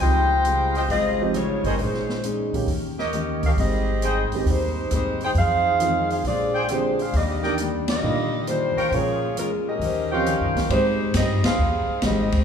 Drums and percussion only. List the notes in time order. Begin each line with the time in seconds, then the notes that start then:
0.00 open hi-hat
0.45 closed hi-hat
0.75 open hi-hat
0.90 open hi-hat
1.34 cross-stick, closed hi-hat
1.64 open hi-hat
1.79 open hi-hat
1.94 snare
2.09 snare
2.23 closed hi-hat
2.54 open hi-hat
2.68 open hi-hat
2.99 snare
3.13 cross-stick, closed hi-hat
3.43 kick, open hi-hat
3.58 open hi-hat
4.02 closed hi-hat
4.32 open hi-hat
4.46 open hi-hat
4.91 cross-stick, closed hi-hat
5.20 open hi-hat
5.35 open hi-hat
5.80 closed hi-hat
6.10 open hi-hat
6.25 open hi-hat
6.68 cross-stick, closed hi-hat
6.99 open hi-hat
7.13 open hi-hat
7.43 snare
7.58 closed hi-hat
7.88 snare, ride
8.47 cross-stick, closed hi-hat
8.78 open hi-hat
8.92 open hi-hat
9.37 closed hi-hat
9.81 open hi-hat
10.26 cross-stick, closed hi-hat
10.56 snare, open hi-hat
10.70 ride
11.14 snare, hi-hat pedal, ride
11.44 snare, ride
12.02 snare, hi-hat pedal, ride
12.32 kick, ride